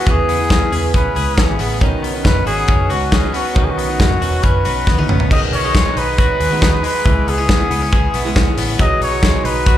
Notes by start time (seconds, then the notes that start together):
Already playing: B3 C#4 F#4 G#4
0.05 E2 C#3 E3 B3 E4 G#4 B4, kick, closed hi-hat
0.11 G#4
0.29 B3, open hi-hat
0.38 B3 E4 G#4 B4
0.50 C#4, kick, snare, closed hi-hat
0.71 E2 B3 E4 G#4 B4, open hi-hat
0.94 B1 C#4 B4, kick, closed hi-hat
1.15 C#2 B3 E4 G#4 B4, open hi-hat
1.38 G#1 C#4, kick, snare, closed hi-hat
1.48 B3 E4 G#4 B4
1.59 A1 B3 E4 G#4 B4, open hi-hat
1.80 B1 B2 D#3 F#3 C#4 D#4 B4, kick, closed hi-hat
2.02 B3, open hi-hat
2.13 F#3 C#4 D#4 B4
2.24 F#1 C#4 B4, kick, snare, closed hi-hat
2.46 G#1 F#3 C#4 D#4 F#4 G#4 B4, open hi-hat
2.68 F#1 C#4, kick, closed hi-hat
2.89 C#2 F#3 C#4 D#4 F#4 B4, open hi-hat
3.12 C#4 G#4, kick, snare, closed hi-hat
3.22 F#3 C#4 D#4 B4
3.32 F#3 B3 C#4 D#4 F#4 B4, open hi-hat
3.54 B1 B2 D#3 F#3 C#4 D#4 F#4 B4, kick, closed hi-hat
3.64 G#4
3.70 F#4
3.78 B3, open hi-hat
3.88 F#3 C#4 D#4 B4
4.00 F#1 C#4, kick, snare, closed hi-hat
4.20 E1 F#3 C#4 D#4 F#4 B4, open hi-hat
4.43 F#1 C#4 B4, kick, closed hi-hat
4.65 B1 F#3 C#4 D#4 F#4 B4, open hi-hat
4.87 D#2 B3, kick, snare
4.97 F#3 C#4 D#4 B4, high tom
5.08 A1 F#3 B3 C#4 D#4 B4, mid tom
5.20 floor tom
5.30 B1 D#3 F#3 B3 D#4 G#4 D#5, kick, crash
5.52 B1 C#4 C#5, open hi-hat
5.63 F#3 B3 D#4 G#4
5.74 G#3, kick, snare, closed hi-hat
5.85 F#3 B3 D#4 G#4
5.96 B1 D#4 B4, open hi-hat
6.18 F#3 B3 D#4 F#4 G#4, kick, closed hi-hat
6.40 D#2 G#3, open hi-hat
6.51 B2 D#3 F#3 B3 D#4 G#4
6.62 D#4, kick, snare, closed hi-hat
6.73 F#3 B3 D#4 G#4
6.83 G#3 B4, open hi-hat
7.05 C#2 E3 G#3 B3 E4 G#4, kick, closed hi-hat
7.27 C#2 B3 G#4, open hi-hat
7.37 B3 C#4 E4 G#4
7.48 B3, kick, snare, closed hi-hat
7.59 B3 E4 G#4
7.71 C#2 B3, open hi-hat
7.82 C#4
7.91 G#3 B3 E4 G#4, kick, closed hi-hat
8.14 B1 B3, open hi-hat
8.25 C#3 G#3 B3 E4 G#4
8.36 C#4, kick, snare, closed hi-hat
8.46 B3 E4 G#4
8.57 A1 B3, open hi-hat
8.79 B1 F#3 B3 D#4 G#4 D#5, kick, closed hi-hat
9.01 B1 D#4 C#5, open hi-hat
9.11 F#3 B3 D#4 G#4
9.23 G#3, kick, snare, closed hi-hat
9.33 F#3 B3 D#4 G#4
9.44 B1 D#4 B4, open hi-hat
9.65 F#3 B3 D#4 F#4 G#4, kick, closed hi-hat